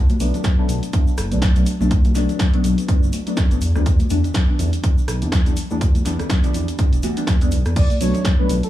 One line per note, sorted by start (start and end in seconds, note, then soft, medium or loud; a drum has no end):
0.09 closed hi-hat soft
0.09 high conga loud
0.09 shaker soft
0.20 0.32 B1 medium
0.20 0.55 F#3 medium
0.20 0.55 A3 medium
0.20 0.55 B3 medium
0.20 0.55 D4 loud
0.20 open hi-hat loud
0.20 shaker medium
0.34 closed hi-hat soft
0.34 low conga medium
0.34 shaker soft
0.44 kick loud
0.44 snare loud
0.44 closed hi-hat medium
0.44 shaker soft
0.58 0.91 F#3 loud
0.58 0.91 A3 medium
0.58 0.91 B3 medium
0.58 0.91 D4 loud
0.68 0.80 B1 loud
0.68 open hi-hat medium
0.68 low conga medium
0.68 shaker medium
0.83 closed hi-hat medium
0.83 shaker soft
0.93 1.10 F#3 medium
0.93 1.10 A3 medium
0.93 1.10 B3 medium
0.93 1.10 D4 medium
0.93 kick loud
0.93 closed hi-hat medium
0.93 shaker soft
1.07 shaker soft
1.18 1.33 F#1 medium
1.18 cross-stick medium
1.18 open hi-hat loud
1.18 shaker medium
1.31 1.51 B1 medium
1.31 1.45 F#3 medium
1.31 1.46 A3 medium
1.31 1.46 B3 medium
1.31 1.46 D4 medium
1.31 closed hi-hat medium
1.31 shaker soft
1.42 kick loud
1.42 snare loud
1.42 closed hi-hat medium
1.42 shaker medium
1.56 1.65 B1 loud
1.56 1.70 F#3 medium
1.56 1.70 A3 medium
1.56 1.70 B3 medium
1.56 1.70 D4 medium
1.56 closed hi-hat soft
1.56 shaker soft
1.66 open hi-hat loud
1.66 shaker medium
1.80 2.12 B1 medium
1.80 1.94 F#3 loud
1.80 1.94 A3 medium
1.80 1.95 B3 medium
1.80 1.95 D4 loud
1.80 high conga loud
1.80 shaker soft
1.91 kick loud
1.91 closed hi-hat medium
1.91 shaker soft
2.04 closed hi-hat soft
2.04 high conga loud
2.04 shaker soft
2.15 2.27 B1 medium
2.15 2.50 F#3 medium
2.15 2.50 A3 medium
2.15 2.50 B3 medium
2.15 2.50 D4 loud
2.15 snare soft
2.15 open hi-hat loud
2.15 shaker medium
2.29 closed hi-hat soft
2.29 low conga medium
2.29 shaker soft
2.39 kick loud
2.39 snare loud
2.39 closed hi-hat medium
2.39 shaker medium
2.53 2.86 F#3 loud
2.53 2.86 A3 medium
2.53 2.86 B3 medium
2.53 2.86 D4 loud
2.53 closed hi-hat soft
2.64 2.75 B1 loud
2.64 open hi-hat medium
2.64 low conga medium
2.64 shaker medium
2.78 closed hi-hat medium
2.78 shaker soft
2.88 3.05 F#3 medium
2.88 3.05 A3 medium
2.88 3.05 B3 medium
2.88 3.05 D4 medium
2.88 kick loud
2.88 closed hi-hat medium
2.88 shaker soft
3.02 3.11 F#1 loud
3.02 shaker soft
3.13 open hi-hat loud
3.13 high conga medium
3.13 shaker medium
3.26 3.41 F#3 medium
3.26 3.41 A3 medium
3.26 3.41 B3 medium
3.26 3.41 D4 medium
3.26 closed hi-hat medium
3.26 shaker soft
3.37 kick loud
3.37 snare loud
3.37 closed hi-hat medium
3.37 shaker soft
3.51 3.60 A1 loud
3.51 3.60 F#3 medium
3.51 3.60 A3 medium
3.51 3.60 B3 medium
3.51 3.61 D4 medium
3.51 closed hi-hat soft
3.51 shaker soft
3.61 3.73 E2 medium
3.61 open hi-hat medium
3.61 shaker medium
3.75 3.84 D2 loud
3.75 3.89 E3 loud
3.75 3.89 G3 medium
3.75 3.90 B3 medium
3.75 3.90 D4 loud
3.75 cross-stick medium
3.75 shaker soft
3.86 3.97 E2 loud
3.86 kick loud
3.86 closed hi-hat medium
3.86 shaker medium
3.99 closed hi-hat soft
3.99 high conga medium
3.99 shaker soft
4.10 4.22 E2 medium
4.10 4.45 E3 loud
4.10 4.45 G3 medium
4.10 4.45 B3 medium
4.10 4.46 D4 loud
4.10 open hi-hat loud
4.10 shaker medium
4.24 closed hi-hat soft
4.24 low conga medium
4.24 shaker soft
4.34 kick loud
4.34 snare loud
4.34 closed hi-hat medium
4.34 shaker soft
4.48 4.81 E3 loud
4.48 4.81 G3 medium
4.48 4.81 B3 medium
4.48 4.81 D4 loud
4.59 4.71 E2 loud
4.59 open hi-hat medium
4.59 low conga medium
4.59 shaker medium
4.73 closed hi-hat medium
4.73 shaker soft
4.83 5.00 E3 medium
4.83 5.00 G3 medium
4.83 5.00 B3 medium
4.83 5.00 D4 medium
4.83 kick loud
4.83 closed hi-hat medium
4.83 shaker soft
4.98 shaker soft
5.08 5.23 B1 medium
5.08 cross-stick medium
5.08 open hi-hat medium
5.08 shaker medium
5.21 5.41 E2 medium
5.21 5.36 E3 medium
5.21 5.36 G3 medium
5.21 5.36 B3 medium
5.21 5.36 D4 medium
5.21 closed hi-hat medium
5.21 shaker soft
5.32 kick loud
5.32 snare loud
5.32 closed hi-hat medium
5.32 shaker medium
5.46 5.55 E2 loud
5.46 5.60 E3 medium
5.46 5.60 G3 medium
5.46 5.60 B3 medium
5.46 5.61 D4 medium
5.46 closed hi-hat soft
5.46 shaker soft
5.56 open hi-hat medium
5.56 shaker loud
5.70 6.02 E2 medium
5.70 5.84 E3 loud
5.70 5.85 G3 medium
5.70 5.85 B3 medium
5.70 5.85 D4 loud
5.70 high conga medium
5.70 shaker soft
5.81 kick loud
5.81 closed hi-hat medium
5.81 shaker medium
5.95 closed hi-hat soft
5.95 high conga medium
5.95 shaker soft
6.05 6.17 E2 medium
6.05 6.40 E3 medium
6.05 6.40 G3 medium
6.05 6.41 B3 medium
6.05 6.41 D4 loud
6.05 snare soft
6.05 open hi-hat loud
6.05 shaker medium
6.19 cross-stick medium
6.19 closed hi-hat soft
6.19 low conga loud
6.19 shaker soft
6.30 kick loud
6.30 snare loud
6.30 closed hi-hat medium
6.30 shaker soft
6.43 6.76 E3 medium
6.43 6.76 G3 medium
6.43 6.76 B3 medium
6.43 6.76 D4 loud
6.43 closed hi-hat soft
6.43 low conga medium
6.43 shaker soft
6.53 6.66 E2 medium
6.53 open hi-hat medium
6.53 low conga medium
6.53 shaker medium
6.68 closed hi-hat medium
6.68 shaker soft
6.78 6.95 E3 medium
6.78 6.95 G3 medium
6.78 6.95 B3 medium
6.78 6.96 D4 medium
6.78 kick loud
6.78 closed hi-hat medium
6.78 shaker medium
6.93 7.01 E1 loud
6.93 closed hi-hat soft
6.93 shaker soft
7.03 7.15 E3 medium
7.03 7.15 G3 medium
7.03 7.15 B3 medium
7.03 7.15 F#4 loud
7.03 open hi-hat loud
7.03 high conga medium
7.03 shaker medium
7.16 7.31 E3 medium
7.16 7.31 G3 medium
7.16 7.31 B3 medium
7.16 7.31 D4 loud
7.16 closed hi-hat medium
7.16 shaker soft
7.27 kick loud
7.27 snare loud
7.27 closed hi-hat medium
7.27 shaker soft
7.41 7.54 E2 medium
7.41 7.55 E3 medium
7.41 7.55 G3 medium
7.41 7.55 B3 medium
7.41 7.56 D4 loud
7.41 closed hi-hat soft
7.41 shaker soft
7.51 7.63 B1 medium
7.51 open hi-hat medium
7.51 shaker medium
7.66 7.74 E2 medium
7.66 cross-stick medium
7.66 closed hi-hat soft
7.66 shaker soft
7.76 7.88 B1 loud
7.76 7.95 D5 loud
7.76 kick loud
7.76 closed hi-hat medium
7.76 crash medium
7.76 shaker medium
7.90 closed hi-hat soft
7.90 high conga medium
7.90 shaker soft
8.00 8.12 B1 medium
8.00 8.35 F#3 medium
8.00 8.36 A3 medium
8.00 8.36 B3 medium
8.00 8.36 D4 loud
8.00 8.28 C#5 loud
8.00 open hi-hat loud
8.00 shaker loud
8.14 closed hi-hat soft
8.14 low conga medium
8.14 shaker soft
8.25 kick loud
8.25 snare loud
8.25 closed hi-hat medium
8.25 shaker medium
8.38 8.70 F#3 loud
8.38 8.70 A3 medium
8.38 8.70 B3 medium
8.38 8.70 D4 loud
8.38 8.56 B4 medium
8.49 8.61 B1 loud
8.49 open hi-hat medium
8.49 low conga medium
8.49 shaker loud
8.63 8.70 A4 medium
8.63 closed hi-hat medium
8.63 shaker soft